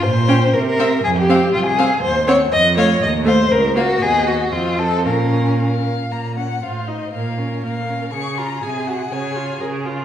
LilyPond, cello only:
\new Staff \with { instrumentName = "Cello" } { \clef bass \time 2/4 \key f \minor \tempo 4 = 120 bes,4 c4 | f,4 c,4 | \key bes \minor ees,4 f,4 | ees,4 des,4 |
dis,4 f,4 | bes,4. r8 | bes,4 a,4 | bes,4 bes,4 |
des4 c4 | des4 des4 | }